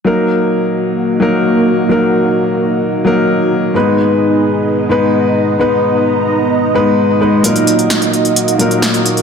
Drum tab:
HH |----------------|----------------|----------------|----------------|
SD |----------------|----------------|----------------|----------------|

HH |xxxxxxxxxxxxxxxx|
SD |----o-------o---|